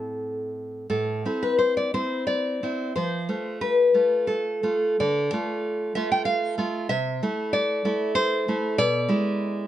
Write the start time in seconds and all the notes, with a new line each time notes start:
Already playing: A2 C4 E4 A4
0.90 A2 A4
1.25 C4 E4
1.43 B4
1.59 C5
1.77 D5
1.94 C4 E4 C5
2.27 D5
2.63 C4 E4
2.96 F3 C5
3.29 A3 F4
3.61 B4
3.94 A3 F4
4.27 A4
4.63 A3 F4
5.00 D3 D5
5.33 A3 F4
5.95 A3 F4 E5
6.12 G5
6.25 F5
6.58 A3 F4
6.89 C3 E5
7.23 A3 E4
7.53 D5
7.85 A3 E4
8.15 C5
8.48 A3 E4
8.78 B2 D5
9.09 G#3 E4